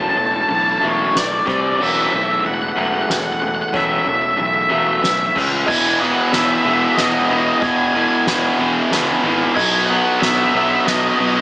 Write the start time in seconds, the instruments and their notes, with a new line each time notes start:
Already playing: fingered electric bass E1, overdriven electric guitar F#2 C#3 F#3, clean electric guitar E3 A3 C#4, ambient pad E3 E4 F#4 A4, felt piano C#5
0.02 lead electric guitar A5
0.09 lead electric guitar A5
0.16 fingered electric bass E1, overdriven electric guitar F#2 C#3, clean electric guitar A3, felt piano C#5, lead electric guitar A5, ride
0.25 lead electric guitar A5
0.32 lead electric guitar A5
0.41 lead electric guitar A5
0.48 fingered electric bass B1, overdriven electric guitar F#2 C#3, clean electric guitar E3, lead electric guitar A5, ride
0.55 lead electric guitar A5
0.63 lead electric guitar A5
0.71 lead electric guitar A5
0.78 overdriven electric guitar F#2 C#3, felt piano E5, lead electric guitar A5
0.82 fingered electric bass E1, overdriven electric guitar F#3, clean electric guitar A3, lead electric guitar C#5
1.13 fingered electric bass B1, overdriven electric guitar F#2 C#3, felt piano B4, lead electric guitar D5, snare, ride
1.24 lead electric guitar D5
1.32 lead electric guitar D5
1.39 lead electric guitar D5
1.46 fingered electric bass C2, overdriven electric guitar C3 G3 C4, clean electric guitar C3, lead electric guitar D5, kick
1.53 lead electric guitar D5
1.61 lead electric guitar D5
1.68 lead electric guitar D5
1.76 overdriven electric guitar F#2 C#3 F#3, clean electric guitar E3, felt piano C#5, lead electric guitar D5
1.80 fingered electric bass E1, ambient pad E3 C#4 G#4 A4, lead electric guitar E5, crash
1.92 lead electric guitar E5
1.99 lead electric guitar E5
2.07 felt piano C#5, lead electric guitar E5
2.12 fingered electric bass B1, overdriven electric guitar F#2 C#3, clean electric guitar A3, lead electric guitar E5
2.23 lead electric guitar E5
2.32 lead electric guitar E5
2.40 overdriven electric guitar F#2 C#3, clean electric guitar E3, lead electric guitar E5
2.45 fingered electric bass E1, lead electric guitar F#5
2.54 lead electric guitar F#5
2.62 lead electric guitar F#5
2.69 lead electric guitar F#5
2.76 fingered electric bass E1, overdriven electric guitar F#2 C#3 F#3, clean electric guitar A3, felt piano E5, lead electric guitar F#5
2.87 lead electric guitar F#5
2.94 lead electric guitar F#5
3.02 lead electric guitar F#5
3.08 fingered electric bass E1, overdriven electric guitar F#2 C#3, clean electric guitar C#4, felt piano B4, lead electric guitar F#5, snare
3.18 lead electric guitar F#5
3.26 lead electric guitar F#5
3.33 lead electric guitar F#5
3.40 overdriven electric guitar F#2 C#3, clean electric guitar A3, lead electric guitar F#5
3.48 lead electric guitar F#5
3.55 lead electric guitar F#5
3.62 lead electric guitar F#5
3.69 clean electric guitar E3, lead electric guitar F#5
3.73 fingered electric bass E1, overdriven electric guitar F#2 C#3 F#3, felt piano C#5, lead electric guitar E5, kick
3.85 lead electric guitar E5
3.91 lead electric guitar E5
3.99 lead electric guitar E5
4.05 fingered electric bass E1, overdriven electric guitar F#2 C#3, clean electric guitar A3, felt piano C#5, lead electric guitar E5
4.15 lead electric guitar E5
4.22 lead electric guitar E5
4.31 lead electric guitar E5
4.36 fingered electric bass B1, overdriven electric guitar F#2 C#3, clean electric guitar E3, lead electric guitar E5
4.46 lead electric guitar E5
4.55 lead electric guitar E5
4.62 lead electric guitar E5
4.69 fingered electric bass E1, overdriven electric guitar F#2 C#3 F#3, clean electric guitar A3, felt piano E5, lead electric guitar E5
4.78 lead electric guitar E5
4.87 lead electric guitar E5
4.93 lead electric guitar E5
5.02 fingered electric bass B1, overdriven electric guitar F#2 C#3, clean electric guitar C#4, felt piano B4, lead electric guitar E5, snare
5.10 lead electric guitar E5
5.17 lead electric guitar E5
5.26 lead electric guitar E5
5.35 fingered electric bass C#2, clean electric guitar C#3, overdriven electric guitar C#3 G#3 C#4, kick, crash
5.66 fingered electric bass E1, overdriven electric guitar E2 B2 E3, clean electric guitar E3, felt piano D#5, lead electric guitar G#5, kick, crash
5.99 overdriven electric guitar E2 B2 E3, lead electric guitar F#5, felt piano D#6
6.32 fingered electric bass E1, overdriven electric guitar E2 B2 E3, clean electric guitar B3, lead electric guitar E5, snare, ride
6.39 lead electric guitar E5
6.47 lead electric guitar E5
6.54 lead electric guitar E5
6.62 fingered electric bass E1, clean electric guitar G#3, lead electric guitar E5, felt piano E5
6.66 overdriven electric guitar E2 B2 E3, lead electric guitar E5
6.77 lead electric guitar E5
6.85 lead electric guitar E5
6.92 felt piano B4, lead electric guitar D#5 E5
6.97 fingered electric bass E1, overdriven electric guitar E2 B2 E3, clean electric guitar B3, snare, ride
7.03 lead electric guitar D#5
7.10 lead electric guitar D#5
7.18 lead electric guitar D#5
7.25 lead electric guitar D#5, ride
7.30 fingered electric bass E1, overdriven electric guitar E2 B2 E3, lead electric guitar D#5
7.40 lead electric guitar D#5
7.48 lead electric guitar D#5
7.55 lead electric guitar D#5
7.61 fingered electric bass E1, overdriven electric guitar E2 B2 E3, clean electric guitar E3, felt piano D#5, lead electric guitar G#5, kick, ride
7.70 lead electric guitar G#5
7.77 lead electric guitar G#5
7.86 lead electric guitar G#5
7.92 overdriven electric guitar E2 B2 E3, felt piano D#5, lead electric guitar G#5
8.00 lead electric guitar G#5
8.08 lead electric guitar G#5
8.15 lead electric guitar G#5
8.27 fingered electric bass E1, overdriven electric guitar E2 B2 E3, clean electric guitar B3, snare, ride
8.58 fingered electric bass E1, overdriven electric guitar E2 B2 E3, clean electric guitar G#3, felt piano E5
8.90 fingered electric bass C#2, overdriven electric guitar E2 B2 E3, clean electric guitar B3, felt piano B4, snare, ride
9.22 fingered electric bass G#1, overdriven electric guitar E2 B2 E3, clean electric guitar D#4
9.55 fingered electric bass B1, overdriven electric guitar B2 F#3 B3, clean electric guitar B2, felt piano D#5, lead electric guitar G#5, kick, crash
9.87 overdriven electric guitar B2 F#3, lead electric guitar F#5, felt piano D#6
9.91 overdriven electric guitar B3
10.19 fingered electric bass B1, overdriven electric guitar B2 F#3 B3, clean electric guitar B3, lead electric guitar E5, snare, ride
10.26 lead electric guitar E5
10.35 lead electric guitar E5
10.42 lead electric guitar E5
10.50 overdriven electric guitar B2 F#3 B3, lead electric guitar E5, felt piano E5
10.54 fingered electric bass B1, clean electric guitar F#3, lead electric guitar E5
10.64 lead electric guitar E5
10.72 lead electric guitar E5
10.80 lead electric guitar E5
10.85 fingered electric bass B1, overdriven electric guitar B2 F#3 B3, clean electric guitar B3, felt piano B4, lead electric guitar D#5, snare, ride
10.92 lead electric guitar D#5
11.00 lead electric guitar D#5
11.08 lead electric guitar D#5
11.16 overdriven electric guitar B2 F#3 B3, lead electric guitar D#5, ride
11.20 fingered electric bass B1, lead electric guitar D#5
11.31 lead electric guitar D#5
11.37 lead electric guitar D#5